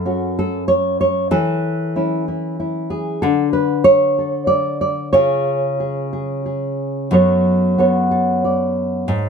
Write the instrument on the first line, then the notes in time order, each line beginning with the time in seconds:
nylon-string guitar
Already playing: F#2 A4
0.05 C#4 F#4
0.39 A4
0.68 C#5
1.01 C#5
1.31 E3 A4
1.96 C#4 E4
2.28 E4
2.60 E4
2.90 G#4
3.22 D3 A4
3.53 B4
3.84 C#5
4.18 A4
4.47 D5
4.81 D5
5.13 C#3 F4 G#4 C#5
5.80 G#4
6.13 G#4
6.46 G#4
7.11 F#2 F#3 B3 A4 C#5
7.78 B3 A4 C#5
8.11 A4
8.45 D5
9.08 G#2